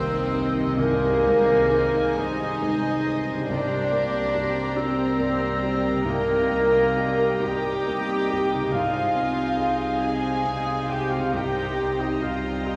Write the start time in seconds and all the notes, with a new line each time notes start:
Already playing: C2 C3 D#3 A#3 C4 D#4 A#4 C5 D#5 G5
0.33 D#4 C5
0.60 C3
0.65 C4
0.69 D#4
0.74 C2 A#3 G#4 A#4 C5
0.78 A#4 G#5
1.23 G#3 C5
1.70 D#4 C5
2.17 D#4 C5 D#5
2.62 G#3 C5
3.06 D#4 C5
3.31 C3
3.36 D4
3.40 G4
3.45 C2 G3 D4 A#4 D5 G5 A#5
3.49 C2 C3 D5
3.92 A#3 D5
4.35 G4 D5
4.75 C4 G4 A#4 C5 D5
5.19 A#3 D5
5.62 G4 D5
5.88 C3
5.92 D#4
5.97 G4
6.01 C2 A#3 D#4 A#4
6.06 A#3 D#5
6.51 A#3 D#5
6.97 G4 D#5
7.41 G4 D#5 G5
7.87 A#3 D#5
8.30 G4 D#5
8.54 C3
8.58 D#4
8.63 G#4
8.67 F4 C5
8.71 C2 C3 G#3 F4 C5 F5 G#5
9.15 C4 D#5
9.57 G#4 D#5
9.99 G#4 D#5 G#5
10.45 C4 D#5
10.88 G4 G#4 D#5 G5
11.11 F4 F5
11.15 C3
11.20 D#4
11.24 G4
11.29 G3 D#4 G4 A#4
11.33 C2 G4 D#5 G5 A#5
11.78 C4 D#5
11.99 D#4 D#5
12.21 F4 G4 D#5 F5
12.66 D#4 G4 D#5